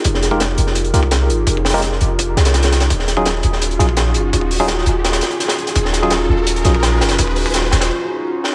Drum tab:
HH |x---x---x---x---x-x-x---x---x---|x---xxxxx---x---x---x-x-x-x-x-x-|x---x---x---x---x-x-x---x---x---|x---o---x---x---x-x-x-x-x-x-x-x-|
SD |--o-o---o-----o-----o---o-------|----ooooo-o---------o-o-o-o-o-o-|--o-o---o-----o-----o---o-------|--------o-o-----o-o-o---o-o---o-|
BD |o-----o---------------o---------|o-o-------------o---------------|o-----o---------------o---------|o-o---o-------------------------|

HH |x---x---x-------x-x-x---x---x-x-|x---o---x---x-x-----------------|
SD |--o-o---o-----------o---o---o-o-|--------o-o-o-o-------------o---|
BD |o-----o---------------o---------|o-o---o-------------------------|